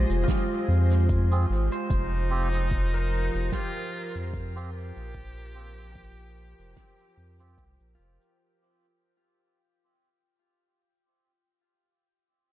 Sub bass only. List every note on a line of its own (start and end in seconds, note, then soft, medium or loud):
0.10 0.26 F1 medium
0.68 1.46 F2 loud
1.50 1.69 G#1 medium
1.90 3.30 F1 loud
3.34 3.50 F1 medium
4.15 4.92 F2 medium
4.96 6.54 A#1 loud
6.59 6.75 F1 loud
7.17 7.57 F2 loud
7.58 7.77 C2 medium
7.80 7.96 A#1 loud
7.99 8.18 F1 loud